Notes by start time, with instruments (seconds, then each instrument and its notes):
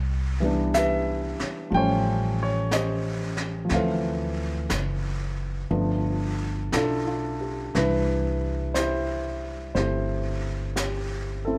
Already playing: upright bass C2
0.40 grand piano E3 G3 B3
0.45 grand piano D4
0.74 grand piano G4 B4 E5, brush sweep, snare, hi-hat pedal
1.40 muted upright bass stroke, snare
1.70 upright bass A1, grand piano F3 G3 A3, brush sweep
1.74 grand piano C#4 C5 C#5 G5
2.43 grand piano C#5
2.71 grand piano C5 D#5, brush sweep, snare, hi-hat pedal
2.76 grand piano G4
3.37 snare
3.65 grand piano F3 A3
3.69 upright bass D2, grand piano C4, brush sweep, snare
3.74 grand piano E3 A4 C5 F5
4.70 upright bass F#1, brush sweep, snare, hi-hat pedal
5.70 upright bass G1, grand piano F3 A3 B3 D4, brush sweep
6.72 upright bass B1, grand piano D4 E4 F4 A4, brush sweep, snare, hi-hat pedal
7.07 grand piano F4
7.41 grand piano G4
7.75 upright bass C2, grand piano E3 G3 D4 E4 B4, brush sweep, snare
8.74 grand piano E4 G4 C5, brush sweep, snare, hi-hat pedal
9.75 upright bass G1, grand piano A3 C4 E4 G4 C5, brush sweep, snare
10.76 grand piano G4, brush sweep, snare, hi-hat pedal
11.45 grand piano C4 E4 A4